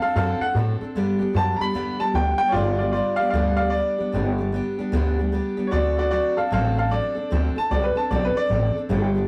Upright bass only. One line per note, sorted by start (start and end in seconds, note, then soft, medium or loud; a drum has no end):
0.01 muted upright bass stroke medium
0.16 0.39 F#2 medium
0.40 muted upright bass stroke medium
0.55 0.80 A2 medium
0.81 muted upright bass stroke medium
0.95 1.19 G2 medium
1.20 muted upright bass stroke soft
1.34 1.59 F#2 loud
1.60 muted upright bass stroke medium
1.74 1.98 E2 medium
2.00 muted upright bass stroke soft
2.14 2.38 D2 loud
2.38 muted upright bass stroke medium
2.53 2.99 G1 medium
3.18 muted upright bass stroke medium
3.33 3.79 D2 medium
3.99 muted upright bass stroke medium
4.13 4.59 G1 medium
4.78 muted upright bass stroke medium
4.92 5.38 D2 medium
5.58 muted upright bass stroke medium
5.72 6.18 D2 medium
6.37 muted upright bass stroke medium
6.52 6.97 A1 medium
7.16 muted upright bass stroke medium
7.32 7.49 D2 loud
7.57 muted upright bass stroke medium
7.71 7.93 C2 medium
7.96 muted upright bass stroke medium
8.11 8.32 B1 medium
8.35 muted upright bass stroke medium
8.50 8.72 A1 medium
8.75 muted upright bass stroke medium
8.89 9.28 G1 loud